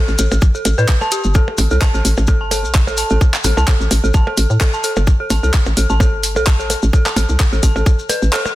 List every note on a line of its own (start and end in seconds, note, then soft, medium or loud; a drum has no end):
0.08 0.16 A1 medium
0.08 maracas soft
0.18 0.28 A1 loud
0.18 0.24 A4 medium
0.18 closed hi-hat loud
0.18 maracas loud
0.31 0.39 A1 loud
0.31 percussion blips soft
0.31 maracas soft
0.41 0.51 A1 medium
0.41 kick loud
0.41 maracas medium
0.55 0.58 A4 medium
0.55 maracas soft
0.65 0.75 A1 loud
0.65 closed hi-hat loud
0.65 percussion blips soft
0.65 maracas medium
0.78 0.86 A2 medium
0.78 0.81 B4 loud
0.78 maracas soft
0.88 kick loud
0.88 clap medium
0.88 maracas soft
1.01 1.04 A5 loud
1.01 percussion blips soft
1.01 maracas soft
1.12 1.15 G4 medium
1.12 closed hi-hat loud
1.12 maracas loud
1.24 1.41 G1 medium
1.24 maracas soft
1.34 1.40 A4 medium
1.34 kick loud
1.34 maracas medium
1.48 percussion blips soft
1.58 1.68 A1 loud
1.58 open hi-hat medium
1.58 percussion blips medium
1.58 maracas loud
1.71 1.79 C2 medium
1.71 1.74 A4 medium
1.71 maracas soft
1.81 1.85 A5 medium
1.81 kick loud
1.81 clap medium
1.81 percussion blips soft
1.81 maracas medium
1.94 2.02 A1 medium
1.94 1.99 A4 medium
1.94 maracas soft
2.05 2.14 A1 loud
2.05 open hi-hat medium
2.05 maracas loud
2.17 2.42 A1 loud
2.17 percussion blips soft
2.17 maracas soft
2.27 2.32 A4 medium
2.27 kick loud
2.27 percussion blips medium
2.27 maracas medium
2.41 2.66 G1 loud
2.41 2.44 A5 medium
2.51 2.57 A4 medium
2.51 open hi-hat medium
2.51 percussion blips soft
2.51 maracas medium
2.64 2.89 B1 medium
2.64 maracas soft
2.74 kick loud
2.74 clap medium
2.74 maracas medium
2.87 3.03 A1 loud
2.87 2.90 A4 medium
2.87 percussion blips soft
2.87 maracas soft
2.97 3.01 A5 medium
2.97 open hi-hat medium
2.97 maracas medium
3.10 3.18 A1 loud
3.10 3.15 A4 medium
3.10 maracas soft
3.21 kick loud
3.21 percussion blips soft
3.21 maracas medium
3.34 clap medium
3.44 3.54 A1 loud
3.44 3.48 A4 medium
3.44 open hi-hat medium
3.44 percussion blips medium
3.44 maracas loud
3.57 3.65 C2 medium
3.57 3.60 A5 medium
3.57 percussion blips soft
3.57 maracas soft
3.67 3.73 A4 medium
3.67 kick loud
3.67 clap medium
3.67 maracas medium
3.80 3.88 A1 medium
3.80 maracas soft
3.91 4.00 A1 loud
3.91 open hi-hat medium
3.91 percussion blips soft
3.91 maracas medium
4.04 4.11 A1 loud
4.04 4.07 A4 medium
4.04 maracas soft
4.14 4.23 A1 medium
4.14 4.18 A5 medium
4.14 kick loud
4.14 maracas soft
4.27 4.31 A4 medium
4.27 percussion blips soft
4.37 4.47 A1 loud
4.37 open hi-hat medium
4.37 maracas medium
4.50 4.58 A2 medium
4.50 maracas soft
4.61 4.64 A4 medium
4.61 kick loud
4.61 clap loud
4.61 percussion blips soft
4.61 maracas medium
4.73 4.76 A5 medium
4.73 maracas soft
4.83 4.89 A4 medium
4.83 open hi-hat medium
4.83 maracas medium
4.96 5.13 G1 medium
4.96 percussion blips soft
4.96 maracas soft
5.07 kick loud
5.07 maracas medium
5.20 5.23 A4 medium
5.30 5.40 A1 loud
5.30 5.34 A5 medium
5.30 open hi-hat medium
5.30 percussion blips soft
5.30 percussion blips medium
5.30 maracas medium
5.43 5.51 C2 medium
5.43 5.48 A4 medium
5.43 maracas soft
5.54 kick loud
5.54 clap medium
5.54 maracas soft
5.66 5.74 A1 medium
5.66 percussion blips soft
5.66 maracas soft
5.77 5.86 A1 loud
5.77 5.80 A4 medium
5.77 open hi-hat medium
5.77 maracas medium
5.90 6.15 A1 loud
5.90 5.93 A5 medium
5.90 maracas soft
6.00 6.06 A4 medium
6.00 kick loud
6.00 percussion blips soft
6.00 percussion blips medium
6.00 maracas medium
6.13 6.38 G1 loud
6.23 open hi-hat medium
6.23 maracas medium
6.36 6.61 B1 medium
6.36 6.39 A4 medium
6.36 percussion blips soft
6.36 maracas soft
6.47 6.50 A5 medium
6.47 kick loud
6.47 clap medium
6.47 maracas soft
6.59 6.76 A1 loud
6.59 6.64 A4 medium
6.59 maracas soft
6.70 open hi-hat medium
6.70 percussion blips soft
6.70 maracas medium
6.82 6.90 A1 loud
6.82 maracas soft
6.93 6.97 A4 medium
6.93 kick loud
6.93 maracas medium
7.06 7.09 A5 medium
7.06 clap medium
7.06 percussion blips soft
7.06 maracas soft
7.16 7.26 A1 loud
7.16 7.22 A4 medium
7.16 open hi-hat medium
7.16 percussion blips medium
7.16 maracas loud
7.29 7.37 C2 medium
7.29 maracas soft
7.40 kick loud
7.40 clap medium
7.40 percussion blips soft
7.40 maracas medium
7.52 7.60 A1 medium
7.52 7.55 A4 medium
7.52 maracas soft
7.63 7.72 A1 loud
7.63 7.67 A5 medium
7.63 kick medium
7.63 open hi-hat loud
7.63 maracas loud
7.76 7.83 A1 loud
7.76 7.80 A4 medium
7.76 percussion blips soft
7.76 maracas soft
7.86 kick loud
7.86 maracas medium
7.99 maracas soft
8.09 8.13 B4 medium
8.09 open hi-hat medium
8.09 percussion blips soft
8.09 maracas medium
8.22 8.30 A1 loud
8.22 maracas soft
8.33 8.36 A4 loud
8.33 clap loud
8.33 maracas soft
8.46 percussion blips soft
8.46 maracas soft